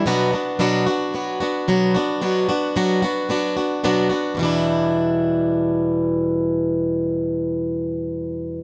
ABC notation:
X:1
M:4/4
L:1/8
Q:1/4=111
K:Em
V:1 name="Steel-string acoustic guitar"
[B,,F,B,DF] [B,DF] [B,,F,B,DF] [B,DF] [F,B,DF] [B,DF] [B,,F,B,DF] [B,DF] | [B,,F,B,DF] [B,DF] [B,,F,B,DF] [B,DF] [F,B,DF] [B,DF] [B,,F,B,DF] [B,DF] | [E,,B,,E,G,DE]8- | [E,,B,,E,G,DE]8 |]